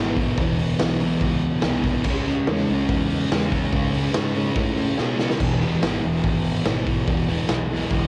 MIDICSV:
0, 0, Header, 1, 4, 480
1, 0, Start_track
1, 0, Key_signature, 4, "major"
1, 0, Tempo, 418994
1, 439, Time_signature, 4, 2, 24, 8
1, 9245, End_track
2, 0, Start_track
2, 0, Title_t, "Distorted electric guitar"
2, 0, Program_c, 0, 30
2, 0, Note_on_c, 0, 40, 83
2, 0, Note_on_c, 0, 47, 88
2, 5, Note_on_c, 0, 52, 86
2, 201, Note_off_c, 0, 52, 0
2, 205, Note_on_c, 0, 52, 81
2, 230, Note_off_c, 0, 47, 0
2, 244, Note_on_c, 0, 47, 67
2, 431, Note_off_c, 0, 40, 0
2, 445, Note_on_c, 0, 40, 96
2, 457, Note_off_c, 0, 47, 0
2, 470, Note_on_c, 0, 47, 104
2, 475, Note_off_c, 0, 52, 0
2, 479, Note_on_c, 0, 52, 115
2, 665, Note_off_c, 0, 52, 0
2, 670, Note_on_c, 0, 52, 70
2, 690, Note_off_c, 0, 47, 0
2, 704, Note_on_c, 0, 47, 62
2, 894, Note_off_c, 0, 40, 0
2, 908, Note_on_c, 0, 40, 109
2, 916, Note_off_c, 0, 47, 0
2, 930, Note_on_c, 0, 47, 101
2, 945, Note_off_c, 0, 52, 0
2, 950, Note_on_c, 0, 52, 120
2, 1154, Note_off_c, 0, 52, 0
2, 1159, Note_on_c, 0, 52, 68
2, 1177, Note_off_c, 0, 47, 0
2, 1191, Note_on_c, 0, 47, 59
2, 1394, Note_off_c, 0, 40, 0
2, 1876, Note_on_c, 0, 40, 84
2, 1886, Note_off_c, 0, 47, 0
2, 1899, Note_on_c, 0, 47, 80
2, 1915, Note_off_c, 0, 52, 0
2, 1920, Note_on_c, 0, 52, 84
2, 2127, Note_off_c, 0, 52, 0
2, 2131, Note_on_c, 0, 52, 75
2, 2159, Note_off_c, 0, 47, 0
2, 2173, Note_on_c, 0, 47, 62
2, 2343, Note_off_c, 0, 40, 0
2, 2355, Note_off_c, 0, 47, 0
2, 2360, Note_on_c, 0, 49, 99
2, 2380, Note_off_c, 0, 52, 0
2, 2385, Note_on_c, 0, 56, 110
2, 2404, Note_on_c, 0, 61, 100
2, 2601, Note_off_c, 0, 61, 0
2, 2606, Note_on_c, 0, 61, 73
2, 2637, Note_off_c, 0, 56, 0
2, 2641, Note_on_c, 0, 56, 60
2, 2848, Note_off_c, 0, 49, 0
2, 2852, Note_on_c, 0, 49, 93
2, 2871, Note_off_c, 0, 56, 0
2, 2875, Note_on_c, 0, 56, 111
2, 2891, Note_off_c, 0, 61, 0
2, 2895, Note_on_c, 0, 61, 108
2, 3093, Note_off_c, 0, 61, 0
2, 3097, Note_on_c, 0, 61, 66
2, 3133, Note_off_c, 0, 56, 0
2, 3137, Note_on_c, 0, 56, 57
2, 3781, Note_off_c, 0, 49, 0
2, 3786, Note_on_c, 0, 49, 85
2, 3809, Note_off_c, 0, 56, 0
2, 3812, Note_off_c, 0, 61, 0
2, 3813, Note_on_c, 0, 56, 82
2, 3825, Note_on_c, 0, 61, 81
2, 4011, Note_off_c, 0, 61, 0
2, 4025, Note_on_c, 0, 61, 85
2, 4052, Note_off_c, 0, 56, 0
2, 4057, Note_on_c, 0, 56, 58
2, 4255, Note_off_c, 0, 49, 0
2, 4269, Note_on_c, 0, 49, 93
2, 4293, Note_off_c, 0, 56, 0
2, 4295, Note_off_c, 0, 61, 0
2, 4298, Note_on_c, 0, 56, 96
2, 4309, Note_on_c, 0, 61, 93
2, 4494, Note_off_c, 0, 61, 0
2, 4507, Note_on_c, 0, 61, 73
2, 4538, Note_off_c, 0, 56, 0
2, 4543, Note_on_c, 0, 56, 66
2, 4713, Note_off_c, 0, 49, 0
2, 4727, Note_on_c, 0, 49, 90
2, 4749, Note_off_c, 0, 56, 0
2, 4752, Note_off_c, 0, 61, 0
2, 4754, Note_on_c, 0, 56, 105
2, 4766, Note_on_c, 0, 61, 117
2, 4968, Note_off_c, 0, 61, 0
2, 4982, Note_on_c, 0, 61, 71
2, 5019, Note_off_c, 0, 56, 0
2, 5023, Note_on_c, 0, 56, 61
2, 5222, Note_off_c, 0, 49, 0
2, 5707, Note_on_c, 0, 49, 78
2, 5723, Note_off_c, 0, 56, 0
2, 5728, Note_on_c, 0, 56, 81
2, 5729, Note_off_c, 0, 61, 0
2, 5743, Note_on_c, 0, 61, 84
2, 5937, Note_off_c, 0, 61, 0
2, 5951, Note_on_c, 0, 61, 72
2, 5992, Note_off_c, 0, 56, 0
2, 5997, Note_on_c, 0, 56, 62
2, 6178, Note_off_c, 0, 49, 0
2, 6178, Note_on_c, 0, 40, 100
2, 6180, Note_off_c, 0, 61, 0
2, 6198, Note_on_c, 0, 47, 99
2, 6212, Note_off_c, 0, 56, 0
2, 6217, Note_on_c, 0, 52, 105
2, 6430, Note_off_c, 0, 52, 0
2, 6435, Note_on_c, 0, 52, 74
2, 6467, Note_off_c, 0, 47, 0
2, 6480, Note_on_c, 0, 47, 58
2, 6665, Note_off_c, 0, 40, 0
2, 6670, Note_on_c, 0, 40, 108
2, 6674, Note_off_c, 0, 47, 0
2, 6687, Note_on_c, 0, 47, 106
2, 6702, Note_off_c, 0, 52, 0
2, 6707, Note_on_c, 0, 52, 106
2, 6916, Note_off_c, 0, 52, 0
2, 6920, Note_on_c, 0, 52, 65
2, 6939, Note_off_c, 0, 47, 0
2, 6953, Note_on_c, 0, 47, 54
2, 7614, Note_off_c, 0, 40, 0
2, 7618, Note_on_c, 0, 40, 74
2, 7619, Note_off_c, 0, 47, 0
2, 7632, Note_on_c, 0, 47, 78
2, 7649, Note_off_c, 0, 52, 0
2, 7653, Note_on_c, 0, 52, 84
2, 7858, Note_off_c, 0, 52, 0
2, 7862, Note_on_c, 0, 52, 79
2, 7889, Note_off_c, 0, 47, 0
2, 7903, Note_on_c, 0, 47, 62
2, 8087, Note_off_c, 0, 40, 0
2, 8101, Note_on_c, 0, 40, 96
2, 8116, Note_off_c, 0, 47, 0
2, 8130, Note_on_c, 0, 47, 91
2, 8137, Note_off_c, 0, 52, 0
2, 8142, Note_on_c, 0, 52, 102
2, 8336, Note_off_c, 0, 52, 0
2, 8340, Note_on_c, 0, 52, 80
2, 8358, Note_off_c, 0, 47, 0
2, 8372, Note_on_c, 0, 47, 56
2, 8560, Note_off_c, 0, 40, 0
2, 8574, Note_on_c, 0, 40, 105
2, 8579, Note_off_c, 0, 47, 0
2, 8593, Note_on_c, 0, 47, 110
2, 8608, Note_off_c, 0, 52, 0
2, 8613, Note_on_c, 0, 52, 113
2, 8807, Note_off_c, 0, 52, 0
2, 8811, Note_on_c, 0, 52, 65
2, 8832, Note_off_c, 0, 47, 0
2, 8845, Note_on_c, 0, 47, 61
2, 9065, Note_off_c, 0, 40, 0
2, 9245, Note_off_c, 0, 47, 0
2, 9245, Note_off_c, 0, 52, 0
2, 9245, End_track
3, 0, Start_track
3, 0, Title_t, "Fingered electric bass"
3, 0, Program_c, 1, 33
3, 0, Note_on_c, 1, 32, 90
3, 356, Note_off_c, 1, 32, 0
3, 436, Note_on_c, 1, 28, 88
3, 825, Note_off_c, 1, 28, 0
3, 937, Note_on_c, 1, 35, 89
3, 1317, Note_off_c, 1, 35, 0
3, 1391, Note_on_c, 1, 37, 101
3, 1782, Note_off_c, 1, 37, 0
3, 1870, Note_on_c, 1, 36, 92
3, 2261, Note_off_c, 1, 36, 0
3, 2351, Note_on_c, 1, 37, 97
3, 2742, Note_off_c, 1, 37, 0
3, 2837, Note_on_c, 1, 40, 87
3, 3032, Note_off_c, 1, 40, 0
3, 3087, Note_on_c, 1, 37, 94
3, 3278, Note_off_c, 1, 37, 0
3, 3318, Note_on_c, 1, 40, 96
3, 3705, Note_off_c, 1, 40, 0
3, 3805, Note_on_c, 1, 40, 91
3, 4190, Note_off_c, 1, 40, 0
3, 4272, Note_on_c, 1, 37, 93
3, 4662, Note_off_c, 1, 37, 0
3, 4782, Note_on_c, 1, 44, 92
3, 5160, Note_off_c, 1, 44, 0
3, 5228, Note_on_c, 1, 45, 95
3, 5620, Note_off_c, 1, 45, 0
3, 5725, Note_on_c, 1, 47, 91
3, 6109, Note_off_c, 1, 47, 0
3, 6191, Note_on_c, 1, 28, 92
3, 6581, Note_off_c, 1, 28, 0
3, 6664, Note_on_c, 1, 32, 90
3, 6863, Note_off_c, 1, 32, 0
3, 6917, Note_on_c, 1, 28, 89
3, 7111, Note_off_c, 1, 28, 0
3, 7152, Note_on_c, 1, 32, 94
3, 7541, Note_off_c, 1, 32, 0
3, 7626, Note_on_c, 1, 32, 98
3, 8018, Note_off_c, 1, 32, 0
3, 8100, Note_on_c, 1, 28, 90
3, 8494, Note_off_c, 1, 28, 0
3, 8592, Note_on_c, 1, 35, 91
3, 8981, Note_off_c, 1, 35, 0
3, 9065, Note_on_c, 1, 37, 97
3, 9245, Note_off_c, 1, 37, 0
3, 9245, End_track
4, 0, Start_track
4, 0, Title_t, "Drums"
4, 191, Note_on_c, 9, 36, 91
4, 194, Note_on_c, 9, 46, 65
4, 306, Note_off_c, 9, 36, 0
4, 309, Note_off_c, 9, 46, 0
4, 432, Note_on_c, 9, 36, 122
4, 434, Note_on_c, 9, 46, 85
4, 547, Note_off_c, 9, 36, 0
4, 548, Note_off_c, 9, 46, 0
4, 669, Note_on_c, 9, 46, 62
4, 784, Note_off_c, 9, 46, 0
4, 909, Note_on_c, 9, 46, 100
4, 912, Note_on_c, 9, 38, 112
4, 1023, Note_off_c, 9, 46, 0
4, 1027, Note_off_c, 9, 38, 0
4, 1144, Note_on_c, 9, 46, 65
4, 1259, Note_off_c, 9, 46, 0
4, 1386, Note_on_c, 9, 46, 88
4, 1387, Note_on_c, 9, 36, 116
4, 1500, Note_off_c, 9, 46, 0
4, 1502, Note_off_c, 9, 36, 0
4, 1617, Note_on_c, 9, 46, 72
4, 1731, Note_off_c, 9, 46, 0
4, 1855, Note_on_c, 9, 46, 87
4, 1858, Note_on_c, 9, 38, 116
4, 1970, Note_off_c, 9, 46, 0
4, 1973, Note_off_c, 9, 38, 0
4, 2103, Note_on_c, 9, 46, 63
4, 2106, Note_on_c, 9, 36, 86
4, 2217, Note_off_c, 9, 46, 0
4, 2221, Note_off_c, 9, 36, 0
4, 2338, Note_on_c, 9, 49, 105
4, 2346, Note_on_c, 9, 36, 111
4, 2453, Note_off_c, 9, 49, 0
4, 2461, Note_off_c, 9, 36, 0
4, 2584, Note_on_c, 9, 46, 59
4, 2699, Note_off_c, 9, 46, 0
4, 2831, Note_on_c, 9, 46, 85
4, 2835, Note_on_c, 9, 38, 117
4, 2946, Note_off_c, 9, 46, 0
4, 2949, Note_off_c, 9, 38, 0
4, 3067, Note_on_c, 9, 46, 54
4, 3181, Note_off_c, 9, 46, 0
4, 3311, Note_on_c, 9, 36, 119
4, 3316, Note_on_c, 9, 46, 78
4, 3426, Note_off_c, 9, 36, 0
4, 3430, Note_off_c, 9, 46, 0
4, 3555, Note_on_c, 9, 46, 66
4, 3669, Note_off_c, 9, 46, 0
4, 3799, Note_on_c, 9, 46, 82
4, 3802, Note_on_c, 9, 38, 111
4, 3914, Note_off_c, 9, 46, 0
4, 3917, Note_off_c, 9, 38, 0
4, 4032, Note_on_c, 9, 36, 84
4, 4046, Note_on_c, 9, 46, 66
4, 4147, Note_off_c, 9, 36, 0
4, 4160, Note_off_c, 9, 46, 0
4, 4268, Note_on_c, 9, 36, 117
4, 4271, Note_on_c, 9, 46, 87
4, 4383, Note_off_c, 9, 36, 0
4, 4386, Note_off_c, 9, 46, 0
4, 4511, Note_on_c, 9, 46, 62
4, 4626, Note_off_c, 9, 46, 0
4, 4742, Note_on_c, 9, 46, 88
4, 4746, Note_on_c, 9, 38, 127
4, 4857, Note_off_c, 9, 46, 0
4, 4860, Note_off_c, 9, 38, 0
4, 4977, Note_on_c, 9, 46, 61
4, 5092, Note_off_c, 9, 46, 0
4, 5215, Note_on_c, 9, 46, 87
4, 5222, Note_on_c, 9, 36, 119
4, 5330, Note_off_c, 9, 46, 0
4, 5337, Note_off_c, 9, 36, 0
4, 5465, Note_on_c, 9, 46, 71
4, 5580, Note_off_c, 9, 46, 0
4, 5705, Note_on_c, 9, 38, 66
4, 5820, Note_off_c, 9, 38, 0
4, 5949, Note_on_c, 9, 38, 92
4, 6064, Note_off_c, 9, 38, 0
4, 6070, Note_on_c, 9, 38, 99
4, 6184, Note_off_c, 9, 38, 0
4, 6186, Note_on_c, 9, 36, 113
4, 6186, Note_on_c, 9, 49, 106
4, 6301, Note_off_c, 9, 36, 0
4, 6301, Note_off_c, 9, 49, 0
4, 6433, Note_on_c, 9, 46, 54
4, 6548, Note_off_c, 9, 46, 0
4, 6673, Note_on_c, 9, 46, 89
4, 6676, Note_on_c, 9, 38, 117
4, 6787, Note_off_c, 9, 46, 0
4, 6791, Note_off_c, 9, 38, 0
4, 6910, Note_on_c, 9, 46, 55
4, 7025, Note_off_c, 9, 46, 0
4, 7145, Note_on_c, 9, 36, 109
4, 7146, Note_on_c, 9, 46, 84
4, 7260, Note_off_c, 9, 36, 0
4, 7260, Note_off_c, 9, 46, 0
4, 7375, Note_on_c, 9, 46, 65
4, 7489, Note_off_c, 9, 46, 0
4, 7619, Note_on_c, 9, 46, 86
4, 7623, Note_on_c, 9, 38, 115
4, 7734, Note_off_c, 9, 46, 0
4, 7737, Note_off_c, 9, 38, 0
4, 7866, Note_on_c, 9, 36, 89
4, 7866, Note_on_c, 9, 46, 58
4, 7980, Note_off_c, 9, 36, 0
4, 7981, Note_off_c, 9, 46, 0
4, 8102, Note_on_c, 9, 46, 82
4, 8106, Note_on_c, 9, 36, 120
4, 8217, Note_off_c, 9, 46, 0
4, 8221, Note_off_c, 9, 36, 0
4, 8351, Note_on_c, 9, 46, 59
4, 8465, Note_off_c, 9, 46, 0
4, 8576, Note_on_c, 9, 46, 95
4, 8579, Note_on_c, 9, 38, 123
4, 8690, Note_off_c, 9, 46, 0
4, 8694, Note_off_c, 9, 38, 0
4, 8826, Note_on_c, 9, 46, 62
4, 8941, Note_off_c, 9, 46, 0
4, 9051, Note_on_c, 9, 46, 85
4, 9059, Note_on_c, 9, 36, 113
4, 9166, Note_off_c, 9, 46, 0
4, 9173, Note_off_c, 9, 36, 0
4, 9245, End_track
0, 0, End_of_file